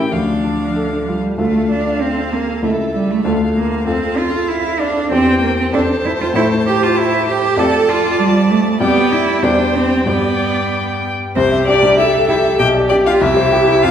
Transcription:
Already playing: A2 E3 G4 A#4 G5
0.11 D2 F3 D4 F5
0.44 D4
0.76 F3 A4
1.08 G3 F4
1.38 D2 A3 D4 F4 A4 F5
1.70 D4
2.01 C4
2.32 A#3
2.63 C#2 A3 E4 A4 E5
2.95 G3
3.11 A3
3.25 D2 A3 D4 F4 A4 F5
3.57 A#3
3.86 F2 C4 F4 A4
4.17 F4
4.48 E4
4.80 D4
5.11 E2 C4 G4 C5 G5
5.42 A#3
5.60 C4
5.73 F2 C4 D4 A4 C5 A5
6.05 E4
6.21 F4
6.34 A2 A3 E4 C5
6.66 G4
6.83 F4
6.97 E4
7.28 G4
7.56 F2 A3 F4 A4 D5 A5
7.89 F4
8.20 G3
8.50 A3
8.80 F2 G3 B3 G4 D5 G5
9.12 E4
9.43 E2 G3 D4 G4 C5 G5
9.76 C4
10.05 G2 G3 B3 G4 D5 G5
11.35 C2 C4 G4 C5
11.52 E5
11.67 D4 G4 D5
11.83 G3
11.98 E4 G4 A4 E5
12.14 E5
12.27 E4 G4 E5
12.44 E5
12.59 B1 G4 G5
12.75 D5
12.89 D4 G4 D5
13.05 F4 F5
13.21 C2 E4 E5
13.37 C5
13.52 G4
13.67 E4
13.82 F2 F4 F5

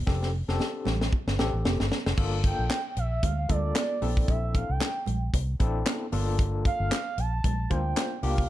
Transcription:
0.07 F1 C4 D4 G4 A4, kick, snare, muted conga
0.23 snare
0.33 muted conga
0.48 F1 C4 D4 G4 A4, snare
0.59 snare, high conga
0.85 A1, snare, low conga
1.01 snare
1.13 kick, muted conga
1.27 G1, snare
1.39 A1 C4 D4 G4 A4, snare, muted conga
1.54 A1
1.65 F1, snare, high conga
1.80 G1, snare, high conga
1.91 snare, high conga
2.06 F1, snare
2.17 G1 A#3 D4 F4 A4, kick, crash, muted conga
2.44 G5, kick, closed hi-hat, muted conga
2.59 A#1
2.70 snare, clap, closed hi-hat, high conga
2.96 A#1 E5, closed hi-hat
3.23 D2 F5, kick, closed hi-hat, muted conga, low conga
3.49 D2 A#3 D4 F4 A4 D5, kick, closed hi-hat, muted conga, low conga
3.75 snare, clap, closed hi-hat, high conga
4.02 A#1 C4 D4 E4 A4, open hi-hat, high conga
4.17 kick
4.28 A#1 E5, kick, closed hi-hat, muted conga
4.54 F5, kick, closed hi-hat, muted conga
4.69 C2 G5
4.81 snare, clap, closed hi-hat, high conga
5.06 A#1, closed hi-hat, low conga
5.34 C2, kick, closed hi-hat, muted conga
5.60 A1 C4 D4 E4 A4, kick, closed hi-hat, muted conga
5.86 snare, clap, closed hi-hat, high conga
6.12 G1 A#3 D4 F4 A4, open hi-hat, high conga
6.39 kick, closed hi-hat, muted conga
6.65 F5, kick, closed hi-hat, muted conga
6.80 G1
6.91 snare, clap, closed hi-hat, high conga
7.18 A#1 A5, closed hi-hat
7.44 A#1, kick, closed hi-hat, muted conga, low conga
7.70 D2 A#3 D4 F4 C5 G5, kick, closed hi-hat, muted conga, low conga
7.96 snare, clap, closed hi-hat, high conga
8.23 C2 A#3 D4 F4 G4 F5, open hi-hat, high conga
8.38 kick

